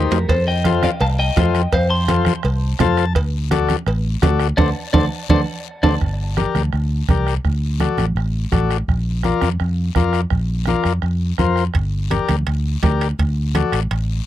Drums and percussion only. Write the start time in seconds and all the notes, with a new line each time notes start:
0.11 bombo rim, low timbale, short guiro
0.29 bombo low, bombo rim, cowbell, long guiro
0.64 bombo rim, cowbell, high conga, short guiro
0.83 bombo rim, high conga, short guiro
1.00 bombo rim, cowbell, long guiro
1.36 bombo low, bombo rim, cowbell, high conga, low timbale, short guiro
1.55 bombo rim, short guiro
1.72 bombo low, bombo rim, cowbell, long guiro
2.08 bombo rim, cowbell, high conga, short guiro
2.25 bombo rim, high conga, short guiro
2.43 bombo rim, cowbell, long guiro
2.79 bombo low, bombo rim, cowbell, high conga, low conga, low timbale, short guiro
2.97 bombo rim, short guiro
3.15 bombo low, bombo rim, cowbell, long guiro
3.51 bombo rim, cowbell, high conga, short guiro
3.69 bombo rim, high conga, short guiro
3.86 bombo rim, cowbell, long guiro
4.22 bombo low, bombo rim, cowbell, high conga, low timbale, short guiro
4.39 bombo rim, short guiro
4.58 bombo low, high conga, high timbale, long guiro
4.94 bombo low, high conga, high timbale, long guiro
5.29 bombo low, high conga, high timbale
5.83 bombo low, high conga, high timbale, long guiro
6.01 bombo low, bombo rim, long guiro
6.37 bombo rim, high conga, short guiro
6.55 bombo rim, high conga, short guiro
6.73 bombo rim, long guiro
7.09 bombo low, bombo rim, high conga, short guiro
7.27 bombo rim, short guiro
7.45 bombo low, bombo rim, long guiro
7.80 bombo rim, high conga, short guiro
7.98 bombo rim, high conga, short guiro
8.16 bombo rim, long guiro
8.52 bombo low, bombo rim, high conga, short guiro
8.71 bombo rim, short guiro
8.88 bombo low, bombo rim, long guiro
9.23 bombo rim, high conga, short guiro
9.41 bombo rim, high conga, short guiro
9.60 bombo rim, long guiro
9.95 bombo low, bombo rim, high conga, short guiro
10.13 bombo rim, short guiro
10.30 bombo low, bombo rim, long guiro
10.65 bombo rim, high conga, short guiro
10.84 bombo rim, short guiro
11.02 bombo rim, long guiro
11.38 bombo low, bombo rim, high conga, short guiro
11.56 bombo rim, short guiro
11.74 bombo low, bombo rim, high timbale, long guiro
12.11 bombo rim, high conga, high timbale, short guiro
12.28 bombo rim, high conga, high timbale, short guiro
12.47 bombo rim, high timbale, long guiro
12.83 bombo low, bombo rim, high conga, high timbale, low timbale, short guiro
13.01 bombo rim, high timbale, short guiro
13.19 bombo low, bombo rim, high timbale, long guiro
13.55 bombo rim, high conga, high timbale, short guiro
13.72 bombo rim, high timbale, short guiro
13.91 bombo rim, high timbale, long guiro